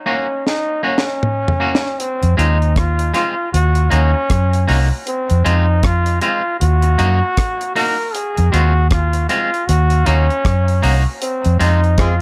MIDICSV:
0, 0, Header, 1, 7, 480
1, 0, Start_track
1, 0, Tempo, 769132
1, 1244, Time_signature, 4, 2, 24, 8
1, 7624, End_track
2, 0, Start_track
2, 0, Title_t, "Trombone"
2, 0, Program_c, 0, 57
2, 49, Note_on_c, 0, 61, 85
2, 291, Note_on_c, 0, 63, 81
2, 300, Note_off_c, 0, 61, 0
2, 524, Note_off_c, 0, 63, 0
2, 528, Note_on_c, 0, 61, 92
2, 1246, Note_on_c, 0, 60, 84
2, 1255, Note_off_c, 0, 61, 0
2, 1483, Note_off_c, 0, 60, 0
2, 1486, Note_on_c, 0, 63, 83
2, 1725, Note_on_c, 0, 65, 85
2, 1734, Note_off_c, 0, 63, 0
2, 1962, Note_off_c, 0, 65, 0
2, 1966, Note_on_c, 0, 65, 88
2, 2188, Note_off_c, 0, 65, 0
2, 2202, Note_on_c, 0, 66, 96
2, 2442, Note_on_c, 0, 61, 98
2, 2452, Note_off_c, 0, 66, 0
2, 3009, Note_off_c, 0, 61, 0
2, 3162, Note_on_c, 0, 60, 86
2, 3403, Note_on_c, 0, 63, 90
2, 3412, Note_off_c, 0, 60, 0
2, 3644, Note_on_c, 0, 65, 102
2, 3654, Note_off_c, 0, 63, 0
2, 3877, Note_off_c, 0, 65, 0
2, 3881, Note_on_c, 0, 65, 92
2, 4105, Note_off_c, 0, 65, 0
2, 4119, Note_on_c, 0, 66, 109
2, 4815, Note_off_c, 0, 66, 0
2, 4843, Note_on_c, 0, 70, 104
2, 5080, Note_on_c, 0, 68, 96
2, 5089, Note_off_c, 0, 70, 0
2, 5323, Note_on_c, 0, 66, 107
2, 5333, Note_off_c, 0, 68, 0
2, 5557, Note_off_c, 0, 66, 0
2, 5560, Note_on_c, 0, 65, 95
2, 5784, Note_off_c, 0, 65, 0
2, 5800, Note_on_c, 0, 65, 98
2, 6038, Note_on_c, 0, 66, 101
2, 6048, Note_off_c, 0, 65, 0
2, 6279, Note_on_c, 0, 61, 105
2, 6288, Note_off_c, 0, 66, 0
2, 6846, Note_off_c, 0, 61, 0
2, 7000, Note_on_c, 0, 60, 85
2, 7224, Note_off_c, 0, 60, 0
2, 7242, Note_on_c, 0, 63, 89
2, 7481, Note_on_c, 0, 65, 92
2, 7490, Note_off_c, 0, 63, 0
2, 7624, Note_off_c, 0, 65, 0
2, 7624, End_track
3, 0, Start_track
3, 0, Title_t, "Horn section"
3, 0, Program_c, 1, 61
3, 7476, Note_on_c, 1, 65, 99
3, 7477, Note_on_c, 1, 56, 96
3, 7477, Note_on_c, 1, 60, 96
3, 7477, Note_on_c, 1, 68, 105
3, 7570, Note_off_c, 1, 60, 0
3, 7570, Note_off_c, 1, 65, 0
3, 7571, Note_off_c, 1, 56, 0
3, 7571, Note_off_c, 1, 68, 0
3, 7624, End_track
4, 0, Start_track
4, 0, Title_t, "Clean electric guitar"
4, 0, Program_c, 2, 27
4, 38, Note_on_c, 2, 58, 82
4, 41, Note_on_c, 2, 61, 88
4, 45, Note_on_c, 2, 66, 86
4, 162, Note_off_c, 2, 58, 0
4, 163, Note_off_c, 2, 61, 0
4, 165, Note_off_c, 2, 66, 0
4, 518, Note_on_c, 2, 58, 70
4, 523, Note_on_c, 2, 61, 73
4, 525, Note_on_c, 2, 66, 86
4, 642, Note_off_c, 2, 58, 0
4, 644, Note_off_c, 2, 61, 0
4, 645, Note_off_c, 2, 66, 0
4, 999, Note_on_c, 2, 58, 68
4, 1003, Note_on_c, 2, 61, 76
4, 1006, Note_on_c, 2, 66, 86
4, 1122, Note_off_c, 2, 58, 0
4, 1124, Note_off_c, 2, 61, 0
4, 1126, Note_off_c, 2, 66, 0
4, 1480, Note_on_c, 2, 56, 71
4, 1484, Note_on_c, 2, 60, 76
4, 1487, Note_on_c, 2, 65, 78
4, 1603, Note_off_c, 2, 56, 0
4, 1605, Note_off_c, 2, 60, 0
4, 1606, Note_off_c, 2, 65, 0
4, 1957, Note_on_c, 2, 56, 89
4, 1961, Note_on_c, 2, 60, 94
4, 1965, Note_on_c, 2, 65, 88
4, 2081, Note_off_c, 2, 56, 0
4, 2083, Note_off_c, 2, 60, 0
4, 2085, Note_off_c, 2, 65, 0
4, 2436, Note_on_c, 2, 58, 77
4, 2441, Note_on_c, 2, 63, 89
4, 2444, Note_on_c, 2, 66, 81
4, 2561, Note_off_c, 2, 58, 0
4, 2563, Note_off_c, 2, 63, 0
4, 2564, Note_off_c, 2, 66, 0
4, 2918, Note_on_c, 2, 58, 84
4, 2923, Note_on_c, 2, 63, 97
4, 2925, Note_on_c, 2, 66, 97
4, 3041, Note_off_c, 2, 58, 0
4, 3044, Note_off_c, 2, 63, 0
4, 3045, Note_off_c, 2, 66, 0
4, 3398, Note_on_c, 2, 56, 88
4, 3403, Note_on_c, 2, 60, 88
4, 3404, Note_on_c, 2, 65, 101
4, 3522, Note_off_c, 2, 56, 0
4, 3524, Note_off_c, 2, 60, 0
4, 3525, Note_off_c, 2, 65, 0
4, 3879, Note_on_c, 2, 56, 74
4, 3884, Note_on_c, 2, 60, 88
4, 3887, Note_on_c, 2, 65, 79
4, 4002, Note_off_c, 2, 56, 0
4, 4004, Note_off_c, 2, 60, 0
4, 4006, Note_off_c, 2, 65, 0
4, 4358, Note_on_c, 2, 58, 87
4, 4362, Note_on_c, 2, 63, 87
4, 4366, Note_on_c, 2, 66, 100
4, 4481, Note_off_c, 2, 58, 0
4, 4483, Note_off_c, 2, 63, 0
4, 4485, Note_off_c, 2, 66, 0
4, 4840, Note_on_c, 2, 58, 88
4, 4845, Note_on_c, 2, 63, 97
4, 4849, Note_on_c, 2, 66, 96
4, 4962, Note_off_c, 2, 58, 0
4, 4965, Note_off_c, 2, 63, 0
4, 4966, Note_off_c, 2, 66, 0
4, 5318, Note_on_c, 2, 56, 76
4, 5322, Note_on_c, 2, 60, 85
4, 5327, Note_on_c, 2, 65, 91
4, 5441, Note_off_c, 2, 56, 0
4, 5443, Note_off_c, 2, 60, 0
4, 5445, Note_off_c, 2, 65, 0
4, 5799, Note_on_c, 2, 56, 80
4, 5802, Note_on_c, 2, 60, 90
4, 5806, Note_on_c, 2, 65, 92
4, 5921, Note_off_c, 2, 56, 0
4, 5923, Note_off_c, 2, 60, 0
4, 5925, Note_off_c, 2, 65, 0
4, 6278, Note_on_c, 2, 58, 78
4, 6282, Note_on_c, 2, 63, 84
4, 6285, Note_on_c, 2, 66, 85
4, 6401, Note_off_c, 2, 58, 0
4, 6403, Note_off_c, 2, 63, 0
4, 6404, Note_off_c, 2, 66, 0
4, 6755, Note_on_c, 2, 58, 83
4, 6758, Note_on_c, 2, 63, 88
4, 6763, Note_on_c, 2, 66, 100
4, 6879, Note_off_c, 2, 58, 0
4, 6881, Note_off_c, 2, 63, 0
4, 6883, Note_off_c, 2, 66, 0
4, 7236, Note_on_c, 2, 56, 83
4, 7240, Note_on_c, 2, 60, 95
4, 7243, Note_on_c, 2, 65, 99
4, 7359, Note_off_c, 2, 56, 0
4, 7361, Note_off_c, 2, 60, 0
4, 7363, Note_off_c, 2, 65, 0
4, 7624, End_track
5, 0, Start_track
5, 0, Title_t, "Fingered electric bass"
5, 0, Program_c, 3, 33
5, 1393, Note_on_c, 3, 41, 92
5, 1477, Note_off_c, 3, 41, 0
5, 1490, Note_on_c, 3, 39, 89
5, 1941, Note_off_c, 3, 39, 0
5, 2209, Note_on_c, 3, 39, 96
5, 2423, Note_off_c, 3, 39, 0
5, 2449, Note_on_c, 3, 39, 91
5, 2577, Note_off_c, 3, 39, 0
5, 2687, Note_on_c, 3, 42, 79
5, 2901, Note_off_c, 3, 42, 0
5, 2929, Note_on_c, 3, 36, 91
5, 3056, Note_off_c, 3, 36, 0
5, 3313, Note_on_c, 3, 41, 94
5, 3396, Note_off_c, 3, 41, 0
5, 3409, Note_on_c, 3, 41, 88
5, 3861, Note_off_c, 3, 41, 0
5, 4129, Note_on_c, 3, 39, 99
5, 4342, Note_off_c, 3, 39, 0
5, 4369, Note_on_c, 3, 42, 92
5, 4497, Note_off_c, 3, 42, 0
5, 5233, Note_on_c, 3, 41, 107
5, 5316, Note_off_c, 3, 41, 0
5, 5328, Note_on_c, 3, 39, 93
5, 5780, Note_off_c, 3, 39, 0
5, 6048, Note_on_c, 3, 39, 109
5, 6261, Note_off_c, 3, 39, 0
5, 6287, Note_on_c, 3, 39, 91
5, 6415, Note_off_c, 3, 39, 0
5, 6525, Note_on_c, 3, 42, 75
5, 6739, Note_off_c, 3, 42, 0
5, 6765, Note_on_c, 3, 36, 88
5, 6893, Note_off_c, 3, 36, 0
5, 7150, Note_on_c, 3, 41, 94
5, 7234, Note_off_c, 3, 41, 0
5, 7244, Note_on_c, 3, 41, 85
5, 7624, Note_off_c, 3, 41, 0
5, 7624, End_track
6, 0, Start_track
6, 0, Title_t, "Muted clean electric guitar strokes"
6, 2584, Note_on_c, 9, 29, 49
6, 2647, Note_off_c, 9, 29, 0
6, 4265, Note_on_c, 9, 29, 49
6, 4328, Note_off_c, 9, 29, 0
6, 6424, Note_on_c, 9, 29, 52
6, 6486, Note_off_c, 9, 29, 0
6, 7624, End_track
7, 0, Start_track
7, 0, Title_t, "Drums"
7, 291, Note_on_c, 9, 38, 53
7, 353, Note_off_c, 9, 38, 0
7, 611, Note_on_c, 9, 38, 76
7, 674, Note_off_c, 9, 38, 0
7, 767, Note_on_c, 9, 45, 74
7, 829, Note_off_c, 9, 45, 0
7, 924, Note_on_c, 9, 43, 90
7, 987, Note_off_c, 9, 43, 0
7, 1092, Note_on_c, 9, 38, 87
7, 1154, Note_off_c, 9, 38, 0
7, 1247, Note_on_c, 9, 42, 83
7, 1309, Note_off_c, 9, 42, 0
7, 1389, Note_on_c, 9, 42, 52
7, 1451, Note_off_c, 9, 42, 0
7, 1492, Note_on_c, 9, 42, 86
7, 1555, Note_off_c, 9, 42, 0
7, 1635, Note_on_c, 9, 42, 30
7, 1698, Note_off_c, 9, 42, 0
7, 1723, Note_on_c, 9, 42, 86
7, 1724, Note_on_c, 9, 36, 104
7, 1732, Note_on_c, 9, 37, 107
7, 1786, Note_off_c, 9, 42, 0
7, 1787, Note_off_c, 9, 36, 0
7, 1794, Note_off_c, 9, 37, 0
7, 1866, Note_on_c, 9, 42, 61
7, 1928, Note_off_c, 9, 42, 0
7, 1962, Note_on_c, 9, 42, 63
7, 1973, Note_on_c, 9, 37, 65
7, 2024, Note_off_c, 9, 42, 0
7, 2035, Note_off_c, 9, 37, 0
7, 2211, Note_on_c, 9, 42, 95
7, 2273, Note_off_c, 9, 42, 0
7, 2341, Note_on_c, 9, 42, 48
7, 2404, Note_off_c, 9, 42, 0
7, 2443, Note_on_c, 9, 42, 72
7, 2506, Note_off_c, 9, 42, 0
7, 2682, Note_on_c, 9, 42, 93
7, 2684, Note_on_c, 9, 36, 105
7, 2688, Note_on_c, 9, 37, 109
7, 2745, Note_off_c, 9, 42, 0
7, 2746, Note_off_c, 9, 36, 0
7, 2751, Note_off_c, 9, 37, 0
7, 2830, Note_on_c, 9, 42, 51
7, 2892, Note_off_c, 9, 42, 0
7, 2924, Note_on_c, 9, 46, 72
7, 2987, Note_off_c, 9, 46, 0
7, 3163, Note_on_c, 9, 42, 88
7, 3225, Note_off_c, 9, 42, 0
7, 3305, Note_on_c, 9, 42, 57
7, 3368, Note_off_c, 9, 42, 0
7, 3407, Note_on_c, 9, 42, 87
7, 3469, Note_off_c, 9, 42, 0
7, 3639, Note_on_c, 9, 42, 90
7, 3642, Note_on_c, 9, 36, 103
7, 3647, Note_on_c, 9, 37, 105
7, 3701, Note_off_c, 9, 42, 0
7, 3704, Note_off_c, 9, 36, 0
7, 3710, Note_off_c, 9, 37, 0
7, 3782, Note_on_c, 9, 42, 59
7, 3844, Note_off_c, 9, 42, 0
7, 3878, Note_on_c, 9, 42, 64
7, 3941, Note_off_c, 9, 42, 0
7, 4126, Note_on_c, 9, 42, 89
7, 4189, Note_off_c, 9, 42, 0
7, 4259, Note_on_c, 9, 42, 53
7, 4321, Note_off_c, 9, 42, 0
7, 4361, Note_on_c, 9, 42, 78
7, 4423, Note_off_c, 9, 42, 0
7, 4601, Note_on_c, 9, 42, 101
7, 4603, Note_on_c, 9, 36, 108
7, 4608, Note_on_c, 9, 37, 105
7, 4664, Note_off_c, 9, 42, 0
7, 4666, Note_off_c, 9, 36, 0
7, 4670, Note_off_c, 9, 37, 0
7, 4749, Note_on_c, 9, 42, 50
7, 4811, Note_off_c, 9, 42, 0
7, 4843, Note_on_c, 9, 46, 68
7, 4906, Note_off_c, 9, 46, 0
7, 5084, Note_on_c, 9, 42, 85
7, 5146, Note_off_c, 9, 42, 0
7, 5226, Note_on_c, 9, 42, 57
7, 5289, Note_off_c, 9, 42, 0
7, 5328, Note_on_c, 9, 42, 87
7, 5390, Note_off_c, 9, 42, 0
7, 5559, Note_on_c, 9, 42, 94
7, 5561, Note_on_c, 9, 36, 101
7, 5567, Note_on_c, 9, 37, 103
7, 5621, Note_off_c, 9, 42, 0
7, 5624, Note_off_c, 9, 36, 0
7, 5630, Note_off_c, 9, 37, 0
7, 5700, Note_on_c, 9, 42, 59
7, 5763, Note_off_c, 9, 42, 0
7, 5800, Note_on_c, 9, 42, 64
7, 5863, Note_off_c, 9, 42, 0
7, 5953, Note_on_c, 9, 42, 37
7, 6016, Note_off_c, 9, 42, 0
7, 6046, Note_on_c, 9, 42, 98
7, 6109, Note_off_c, 9, 42, 0
7, 6179, Note_on_c, 9, 42, 55
7, 6242, Note_off_c, 9, 42, 0
7, 6281, Note_on_c, 9, 42, 73
7, 6343, Note_off_c, 9, 42, 0
7, 6431, Note_on_c, 9, 42, 34
7, 6493, Note_off_c, 9, 42, 0
7, 6521, Note_on_c, 9, 36, 109
7, 6521, Note_on_c, 9, 42, 94
7, 6527, Note_on_c, 9, 37, 114
7, 6583, Note_off_c, 9, 42, 0
7, 6584, Note_off_c, 9, 36, 0
7, 6590, Note_off_c, 9, 37, 0
7, 6667, Note_on_c, 9, 42, 50
7, 6729, Note_off_c, 9, 42, 0
7, 6761, Note_on_c, 9, 46, 67
7, 6824, Note_off_c, 9, 46, 0
7, 7000, Note_on_c, 9, 42, 87
7, 7062, Note_off_c, 9, 42, 0
7, 7143, Note_on_c, 9, 42, 53
7, 7205, Note_off_c, 9, 42, 0
7, 7243, Note_on_c, 9, 42, 85
7, 7305, Note_off_c, 9, 42, 0
7, 7387, Note_on_c, 9, 42, 30
7, 7450, Note_off_c, 9, 42, 0
7, 7475, Note_on_c, 9, 42, 88
7, 7478, Note_on_c, 9, 36, 106
7, 7484, Note_on_c, 9, 37, 109
7, 7538, Note_off_c, 9, 42, 0
7, 7540, Note_off_c, 9, 36, 0
7, 7546, Note_off_c, 9, 37, 0
7, 7624, End_track
0, 0, End_of_file